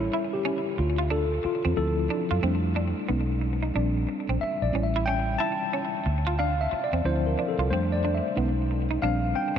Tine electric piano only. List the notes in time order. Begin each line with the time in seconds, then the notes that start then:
Already playing: G3 C#4 C#5
0.00 E4
0.33 G4
0.80 F4
1.11 A4
1.45 F4
1.76 F3 C4 E4 A4
1.98 E4
2.42 G3 A3 D4
3.09 G#3 C#4 D#4
3.74 G3 C4 D4
4.41 E5
4.62 D5
4.73 G3 C#4 E4
4.83 E5
5.06 G5
5.38 A5
6.39 F5
6.61 E5
6.84 D5
7.04 F3 C4 E4 C5
7.27 A#4
7.48 A4
7.70 G3 A3 D4 C5
7.92 D5
8.14 E5
8.36 G#3 C#4 D#4
9.02 G3 C4 D4 F5
9.36 G5